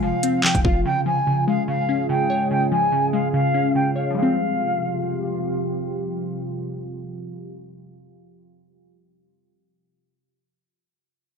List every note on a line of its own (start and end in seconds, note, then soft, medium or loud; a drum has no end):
0.00 0.13 F1 loud
0.00 0.82 C3 medium
0.00 0.82 F3 medium
0.00 0.43 F3 medium
0.00 0.44 G3 medium
0.00 0.85 G#3 medium
0.00 4.12 F4 medium
0.00 0.41 F5 medium
0.23 0.85 C4 medium
0.23 closed hi-hat medium
0.44 0.85 F3 medium
0.44 0.60 G5 medium
0.44 clap loud
0.55 0.64 F1 loud
0.55 kick loud
0.55 closed hi-hat medium
0.65 0.84 F1 loud
0.65 0.85 F4 medium
0.65 0.80 F5 medium
0.65 kick medium
0.85 1.26 C#3 medium
0.85 4.13 C#3 medium
0.85 4.13 G#3 medium
0.85 4.13 G#4 medium
0.85 1.01 G5 loud
1.06 2.09 F3 medium
1.06 1.45 G#5 medium
1.27 1.67 C#3 medium
1.47 2.51 G#3 medium
1.47 1.63 F5 medium
1.68 2.08 C#3 medium
1.68 2.07 F5 medium
1.89 2.92 C#4 medium
2.09 2.50 C#3 medium
2.09 2.48 G5 medium
2.30 3.33 C#5 medium
2.51 2.91 C#3 medium
2.51 2.67 G5 loud
2.71 3.75 F3 medium
2.71 3.10 G#5 medium
2.92 3.32 C#3 medium
3.13 4.17 G#3 medium
3.13 3.29 F5 medium
3.34 3.74 C#3 medium
3.34 3.73 F5 medium
3.54 4.16 C#4 medium
3.75 4.16 C#3 medium
3.75 3.91 G5 medium
3.96 4.16 C#5 medium
3.96 4.11 F5 medium
4.10 8.90 F3 medium
4.14 8.23 C3 medium
4.14 8.23 F3 medium
4.14 8.92 G3 medium
4.14 8.94 G#3 medium
4.14 8.23 F4 medium
4.14 8.23 G4 medium
4.14 5.36 F5 medium
4.22 8.96 C4 medium